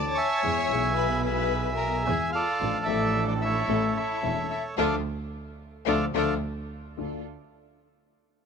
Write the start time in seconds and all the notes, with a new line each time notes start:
Already playing: D2 D3 E3 A3 D4 E4 A4 D5 A5 D6
0.11 C#5 C#6
0.17 E5 G#5
0.43 E2 E3 G#3 B3 E4 G#4
0.69 B1 B2 E3 G#3 B3 E4 G#4
0.73 G#4
0.94 B4 B5
1.22 B4 G#5 B5
1.26 E5
1.77 A#4 A#5
2.04 E2 E3 B3 E4 G#4 G#5
2.09 G#3 G#4
2.31 F4 A4 F5
2.35 D5
2.60 A1 A2 F3 A3 D4 F4 A4
2.85 A1 A2 F3 A3 D4 E4 A4 E5
2.89 D4 A4
3.26 D4 D5
3.39 E4 E5
3.45 A4 C#5
3.68 A1 A2 E3 A3 C#4 E4 A4
3.94 E4 E5
3.99 A4 C#5
4.22 E1 E2 E3 A3 C#4 E4 A4
4.49 E4 E5
4.77 D2 D3 F3 A3 D4 F4 A4 D5 F5
5.85 D2 D3 F3 A3 D4 F4 A4 D5 F5
6.14 D2 D3 F3 A3 D4 F4 A4 D5
6.18 F5
6.97 D2 A3 D4 F4 A4